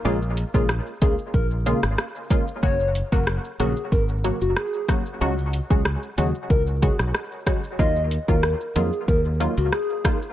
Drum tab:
HH |--x---x---x---x-|--x---x---x---x-|--x---x---x---x-|--x---x---x---x-|
SH |xxxxxxxxxxxxxxxx|xxxxxxxxxxxxxxxx|xxxxxxxxxxxxxxxx|xxxxxxxxxxxxxxxx|
SD |----r------rr---|----r-------r-r-|----r------rr-r-|----r-------r-r-|
BD |---o--o-o-----o-|o--o----o-----o-|---o----o-o---o-|o--o----o-----o-|